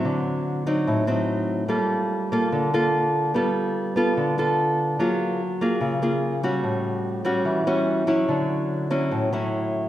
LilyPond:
\new Staff \with { instrumentName = "Nylon-string guitar" } { \time 4/4 \key g \lydian \tempo 4 = 146 << { <fis c'>4. <fis c' ees'>4 <fis c' ees'>4. | <bes f' a'>4. <bes f' a'>4 <bes f' a'>4. | <b f' a'>4. <b f' a'>4 <b f' a'>4. | <ais eis' gis'>4 r8 <ais eis' gis'>4 <ais eis' gis'>4 <g cis' fis'>8~ |
<g cis' fis'>4. <g cis' fis'>4 <g cis' fis'>4 <fis cis' e'>8~ | <fis cis' e'>4. <fis cis' e'>4 <fis cis' e'>4. | } \\ { d2 a,2 | g2 d2 | g2 d2 | fis2 cis2 |
a,2 e2 | d2 a,2 | } >> }